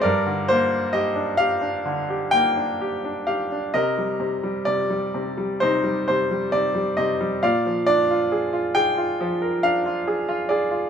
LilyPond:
<<
  \new Staff \with { instrumentName = "Grand piano" } { \time 4/4 \key c \minor \tempo 4 = 66 << { d''8 c''8 ees''8 f''4 g''4 f''8 | ees''4 d''4 c''8 c''8 d''8 ees''8 | f''8 d''4 g''4 f''4 d''8 | } \\ { bes'2 r2 | bes'2 ees'2 | d''2 r2 | } >> }
  \new Staff \with { instrumentName = "Grand piano" } { \time 4/4 \key c \minor g,16 d16 bes8 g'16 d'16 g'16 d'16 d16 g'16 bes16 d'16 g'16 d'16 g'16 d'16 | c16 g16 c16 g16 c16 g16 c16 g16 c16 g16 c16 g16 c16 g16 c16 g16 | bes,16 f16 d'16 f'16 aes'16 f'16 aes'16 f'16 f16 bes'16 d'16 f'16 aes'16 f'16 aes'16 f'16 | }
>>